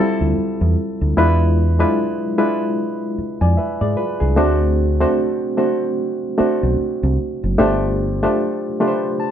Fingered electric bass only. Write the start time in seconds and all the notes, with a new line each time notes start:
0.21 D2
0.38 muted fingered electric bass stroke
0.61 E2
1.01 D2
1.17 E2
3.18 muted fingered electric bass stroke
3.41 F2
3.58 muted fingered electric bass stroke
3.81 G#2
4.21 C2
4.38 D2
6.40 muted fingered electric bass stroke
6.63 B1
6.80 muted fingered electric bass stroke
7.03 C2
7.43 F#1
7.60 G1